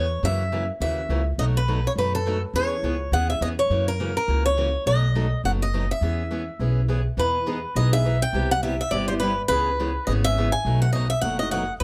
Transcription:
Already playing: upright bass E2, steel-string acoustic guitar C#5
0.23 upright bass F#2, steel-string acoustic guitar C#3 E3 A#3 C#4 F#4 E5
0.52 steel-string acoustic guitar C#3 E3 A#3 C#4 F#4
0.80 upright bass D#2, steel-string acoustic guitar C#3 E3 A#3 C#4 F#4 E5
1.09 upright bass C#2, steel-string acoustic guitar C#3 E3 A#3 C#4 F#4
1.38 upright bass B1, steel-string acoustic guitar B2 F#3 A3 D#4 F#4 D#5
1.57 steel-string acoustic guitar B4
1.68 steel-string acoustic guitar B2 F#3 A3 D#4 F#4
1.87 steel-string acoustic guitar C#5
1.96 upright bass F#2, steel-string acoustic guitar B2 F#3 A3 D#4 F#4 B4
2.15 steel-string acoustic guitar A4
2.26 steel-string acoustic guitar B2 F#3 A3 D#4 F#4
2.53 upright bass E2, steel-string acoustic guitar E3 B3 C#4 G#4 C#5
2.82 upright bass C#2, steel-string acoustic guitar E3 B3 C#4 G#4
3.12 upright bass D#2, steel-string acoustic guitar E3 B3 C#4 G#4 F#5
3.30 steel-string acoustic guitar E5
3.41 upright bass E2, steel-string acoustic guitar E3 B3 C#4 G#4 D#5
3.59 steel-string acoustic guitar C#5
3.70 upright bass F#2, steel-string acoustic guitar C#3 E3 A#3 C#4 F#4
3.88 steel-string acoustic guitar A#4
4.00 steel-string acoustic guitar C#3 E3 A#3 C#4 F#4
4.17 steel-string acoustic guitar A#4
4.28 upright bass C#2, steel-string acoustic guitar C#3 E3 A#3 C#4 F#4
4.46 steel-string acoustic guitar C#5
4.57 steel-string acoustic guitar C#3 E3 A#3 C#4 F#4
4.86 upright bass B1, steel-string acoustic guitar B2 F#3 A3 D#4 F#4 D#5
5.15 steel-string acoustic guitar B2 F#3 A3 D#4 F#4
5.44 upright bass F#1, steel-string acoustic guitar B2 F#3 A3 D#4 F#4 F#5
5.62 steel-string acoustic guitar D#5
5.74 steel-string acoustic guitar B2 F#3 A3 D#4 F#4
5.91 steel-string acoustic guitar E5
6.01 upright bass E2, steel-string acoustic guitar E3 B3 C#4 G#4
6.31 steel-string acoustic guitar E3 B3 C#4 G#4
6.59 upright bass B1, steel-string acoustic guitar E3 B3 C#4 G#4
6.88 steel-string acoustic guitar E3 B3 C#4 G#4
7.17 upright bass E2, steel-string acoustic guitar E3 B3 D#4 G#4 B4
7.46 steel-string acoustic guitar E3 B3 D#4 G#4
7.75 upright bass B1, steel-string acoustic guitar E3 B3 D#4 G#4 D#5
7.93 steel-string acoustic guitar B3 D#4 G#4 E5
8.05 steel-string acoustic guitar E3 B3 D#4 G#4
8.22 steel-string acoustic guitar G5
8.33 upright bass C2, steel-string acoustic guitar C3 G3 B3 E4 G4
8.51 steel-string acoustic guitar F#5
8.63 steel-string acoustic guitar C3 G3 B3 E4 G4 E5
8.81 steel-string acoustic guitar E5
8.91 upright bass G1, steel-string acoustic guitar C3 G3 B3 E4 G4 D5
9.08 steel-string acoustic guitar B3 E4 G4 C5
9.20 steel-string acoustic guitar C3 G3 B3 E4 G4 B4
9.48 upright bass C#2, steel-string acoustic guitar C#3 E3 B3 C#4 G#4 B4
9.80 steel-string acoustic guitar C#3 E3 B3 C#4 G#4
10.07 upright bass G#1, steel-string acoustic guitar C#3 E3 B3 C#4 G#4 D#5
10.24 steel-string acoustic guitar B3 C#4 G#4 E5
10.38 steel-string acoustic guitar C#3 E3 B3 C#4 G#4
10.52 steel-string acoustic guitar G#5
10.65 upright bass B1, steel-string acoustic guitar B2 F#3 A3 D#4 F#4
10.82 steel-string acoustic guitar F#5
10.93 steel-string acoustic guitar B2 F#3 A3 D#4 F#4 D#5
11.10 steel-string acoustic guitar E5
11.21 upright bass F#1, steel-string acoustic guitar B2 F#3 A3 D#4 F#4 F#5
11.39 steel-string acoustic guitar A3 D#4 F#4 D#5
11.51 steel-string acoustic guitar B2 F#3 A3 D#4 F#4 F#5
11.80 upright bass E2, steel-string acoustic guitar B4

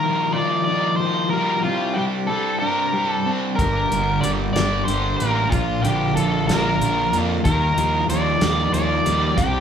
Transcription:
Already playing: overdriven electric guitar D#3, transistor combo organ G3 A#3 D#4 F4, lead electric guitar A#4
0.04 overdriven electric guitar F3
0.33 overdriven electric guitar F3, lead electric guitar D5
0.64 overdriven electric guitar D#4, lead electric guitar D5
0.96 lead electric guitar C5
1.00 overdriven electric guitar F3
1.30 overdriven electric guitar G3, lead electric guitar A#4
1.63 overdriven electric guitar C3, transistor combo organ C4 D4 G4, lead electric guitar F4
1.94 overdriven electric guitar G3, lead electric guitar G4
2.27 overdriven electric guitar G3, lead electric guitar A4
2.59 overdriven electric guitar D4, lead electric guitar A#4
2.94 overdriven electric guitar G3
3.08 lead electric guitar A4
3.26 overdriven electric guitar C4
3.56 fingered electric bass G1, overdriven electric guitar G2, transistor combo organ A#3 G4, lead electric guitar A#4, kick, closed hi-hat
3.92 fingered electric bass G1, overdriven electric guitar D3, closed hi-hat
4.21 fingered electric bass G1, overdriven electric guitar G3, lead electric guitar D5, closed hi-hat
4.53 fingered electric bass G1, overdriven electric guitar D4, lead electric guitar D5, snare, closed hi-hat
4.85 fingered electric bass G1, overdriven electric guitar G3, lead electric guitar C5, closed hi-hat
5.17 fingered electric bass A1, lead electric guitar A#4, closed hi-hat
5.21 overdriven electric guitar A#3
5.49 fingered electric bass A#1, overdriven electric guitar A#2, lead electric guitar F4, kick, closed hi-hat
5.54 transistor combo organ F3 F4
5.82 fingered electric bass A#1, overdriven electric guitar D3, lead electric guitar G4, closed hi-hat
6.16 fingered electric bass A#1, overdriven electric guitar F3, lead electric guitar A4, closed hi-hat
6.48 fingered electric bass A#1, overdriven electric guitar D4, lead electric guitar A#4, snare, closed hi-hat
6.81 fingered electric bass A#1, overdriven electric guitar F3, closed hi-hat
7.13 fingered electric bass F2, overdriven electric guitar A#3, closed hi-hat
7.44 fingered electric bass D#2, overdriven electric guitar D#3, transistor combo organ G3 D#4, lead electric guitar A#4, kick, closed hi-hat
7.77 fingered electric bass D#2, overdriven electric guitar F3, closed hi-hat
8.09 fingered electric bass D#2, overdriven electric guitar F3, lead electric guitar D5, closed hi-hat
8.41 fingered electric bass D#2, overdriven electric guitar D#4, snare, closed hi-hat
8.73 fingered electric bass D#2, overdriven electric guitar F3, lead electric guitar D5, closed hi-hat
9.06 fingered electric bass D#2, overdriven electric guitar G3, closed hi-hat
9.36 fingered electric bass C2, overdriven electric guitar C3, transistor combo organ G3 C4 D4 G4, lead electric guitar G4, kick, closed hi-hat

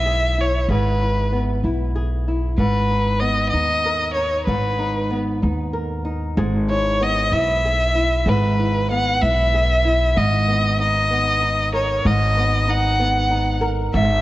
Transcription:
Already playing: upright bass B1, nylon-string guitar G#2 B3 E4, violin E5
0.06 nylon-string guitar G#4
0.38 nylon-string guitar E4, violin C#5
0.69 upright bass G#1, nylon-string guitar G#2 G#4, violin B4
1.01 nylon-string guitar E4
1.32 nylon-string guitar B3
1.64 upright bass B1, nylon-string guitar E4
1.96 nylon-string guitar G#4
2.28 nylon-string guitar E4
2.58 upright bass G#1, nylon-string guitar G#2, violin B4
2.90 nylon-string guitar D#4
3.20 nylon-string guitar B3, violin D#5
3.49 violin D#5
3.53 upright bass D#2, nylon-string guitar D#4
3.85 nylon-string guitar A#4
4.13 nylon-string guitar D#4, violin C#5
4.46 upright bass G#1, nylon-string guitar G#2, violin B4
4.79 nylon-string guitar D#4
5.10 nylon-string guitar B3
5.42 upright bass D#2, nylon-string guitar D#4
5.73 nylon-string guitar A#4
6.05 nylon-string guitar D#4
6.37 upright bass G#1, nylon-string guitar G#2 G#4
6.69 nylon-string guitar E4, violin C#5
7.01 nylon-string guitar B3, violin D#5
7.32 upright bass B1, nylon-string guitar E4, violin E5
7.65 nylon-string guitar G#4
7.95 nylon-string guitar E4
8.26 upright bass G#1, nylon-string guitar G#2 G#4, violin B4
8.60 nylon-string guitar E4
8.91 nylon-string guitar B3, violin F#5
9.22 upright bass B1, nylon-string guitar E4, violin E5
9.54 nylon-string guitar G#4
9.85 nylon-string guitar E4
10.16 upright bass G#1, nylon-string guitar G#2, violin D#5
10.48 nylon-string guitar B3
10.80 nylon-string guitar D#4, violin D#5
11.11 nylon-string guitar B3
11.41 nylon-string guitar D#4
11.73 nylon-string guitar A#4, violin C#5
12.05 upright bass G#1, nylon-string guitar G#2, violin D#5
12.37 nylon-string guitar B3
12.68 nylon-string guitar D#4, violin F#5
13.00 nylon-string guitar B3
13.31 nylon-string guitar D#4
13.61 nylon-string guitar A#4
13.94 upright bass G#1, nylon-string guitar G#2, violin E5

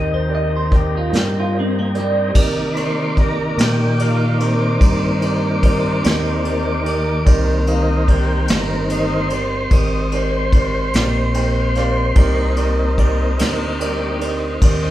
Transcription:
Already playing: fingered electric bass D#2, tonewheel organ C4 D#4 G4 A#4, upright piano D#4 G4 A#4 D5, clean electric guitar D#5
0.14 clean electric guitar C5
0.28 upright piano D#4 G4 A#4 D5
0.35 clean electric guitar D#5
0.56 clean electric guitar C5
0.70 upright piano D#4 G4 A#4 D5, kick, closed hi-hat
0.75 clean electric guitar G4
0.97 clean electric guitar F4
1.11 fingered electric bass G2, upright piano D#4 G4 A#4 D5, closed hi-hat
1.15 clean electric guitar G4, snare
1.40 clean electric guitar F4
1.52 upright piano D#4 G4 A#4 D5
1.60 clean electric guitar C4
1.79 clean electric guitar A#3
1.93 upright piano D#4 G4 A#4 D5, closed hi-hat
1.99 clean electric guitar G3
2.34 fingered electric bass C3, tonewheel organ D#3 A#3 D5, upright piano D#4 G4 A#4 D5, kick, crash
2.72 upright piano D#4 G4 A#4, tonewheel organ B4
2.76 tonewheel organ C5, upright piano D5, ride
3.17 upright piano D#4 G4 A#4 D5, tonewheel organ A#4, kick, ride
3.57 fingered electric bass A#2, upright piano D#4 G4 A#4 D5, tonewheel organ G4, snare, ride
3.98 upright piano D#4 G4 A#4 D5, tonewheel organ F4, ride
4.38 tonewheel organ C4, upright piano D#4 G4 A#4 D5, ride
4.79 fingered electric bass G2, upright piano D#4 G4 A#4 D5, kick, ride
5.20 upright piano D#4 G4 A#4 D5, ride
5.62 upright piano D#4 G4 A#4 D5, kick, ride
6.03 fingered electric bass D#2, upright piano D#4 G4 A#4 D5, snare, ride
6.42 upright piano D#4 G4 A#4 D5, ride
6.83 upright piano D#4 G4 A#4 D5, ride
7.25 fingered electric bass C2, tonewheel organ D#3 A#3 C4, upright piano D#4 G4 A#4 D5, kick, ride
7.66 upright piano D#4 G4 A#4 F5, tonewheel organ D#4, ride
8.06 upright piano D#4 G4 A#4 D5, kick, ride
8.10 tonewheel organ G4
8.48 fingered electric bass G1, upright piano D#4 G4 A#4 D5, tonewheel organ A#4, snare, ride
8.89 tonewheel organ D#3 A#3 D#4 C5, upright piano D#4 G4 A#4 D#5, ride
9.29 upright piano D#4 G4 A#4 D5, ride
9.70 fingered electric bass G#1, upright piano D#4 G4 A#4 D5, tonewheel organ D#5, kick, ride
10.12 upright piano D#4 G4 A#4 D5, tonewheel organ C5, ride
10.53 upright piano D#4 G4 A#4 D5, kick, ride
10.93 fingered electric bass A#1, upright piano D#4 G4 A#4 D5, snare, ride
11.34 upright piano D#4 G4 A#4 C5 G5, ride
11.75 upright piano D#4 G4 A#4 D5 F5, snare, ride
12.15 fingered electric bass C2, tonewheel organ A#3 C4 D#4, upright piano D#4 G4 A#4 D5, kick, ride
12.56 upright piano D#4 G4 A#4 D5, ride
12.97 upright piano D#4 G4 A#4 D5, kick, ride
13.38 fingered electric bass D2, upright piano D#4 G4 A#4 D5, snare, ride
13.79 tonewheel organ G3 A#3 D5, upright piano D#4 G4 A#4 D5, ride
14.19 upright piano D#4 G4 A#4 D5, ride
14.61 fingered electric bass D#2, upright piano D#4 G4 A#4 D5, kick, ride

